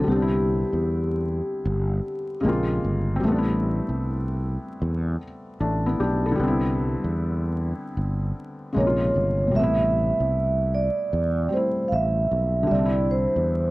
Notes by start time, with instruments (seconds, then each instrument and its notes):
0.00 felt piano D3 G3
0.07 fretless electric bass C2, felt piano B3, vibraphone G4
0.12 felt piano C4
0.16 felt piano D4
0.22 felt piano E4
0.73 fretless electric bass E2
1.66 fretless electric bass G1
2.41 fretless electric bass A#1, felt piano C#3 G#3
2.45 felt piano A#3 C4 F4
2.84 fretless electric bass G1
3.16 felt piano G3 C4
3.23 fretless electric bass A1, felt piano A3
3.28 felt piano B3 D4
3.38 felt piano E4
3.89 fretless electric bass C2
4.82 fretless electric bass E2
5.60 fretless electric bass A1, felt piano A3 D4
5.86 felt piano B3 E4
6.00 fretless electric bass B1, felt piano D4 G4
6.26 felt piano E4 A4
6.32 felt piano D3
6.36 fretless electric bass C2, felt piano G3 B3
6.44 felt piano C4 E4
7.04 fretless electric bass E2
7.97 fretless electric bass G1
8.73 fretless electric bass A#1, felt piano C#3 G#3 A#3
8.78 felt piano C3 D#4, vibraphone C#5
8.87 felt piano F4
9.16 fretless electric bass G1
9.47 felt piano B2 G3
9.54 fretless electric bass A1, felt piano C3 A3, vibraphone E5
9.59 felt piano B3 E4
10.20 fretless electric bass C2
10.75 vibraphone D5
11.13 fretless electric bass E2
11.49 felt piano G3 A3 C4
11.54 felt piano E4, vibraphone C5
11.88 fretless electric bass A1, vibraphone F5
11.93 vibraphone E5
12.31 fretless electric bass B1
12.63 felt piano D3 G3
12.67 fretless electric bass C2, vibraphone E5
12.71 felt piano C4, vibraphone D5
12.79 felt piano D4
12.85 felt piano E4
13.11 vibraphone C5
13.36 fretless electric bass E2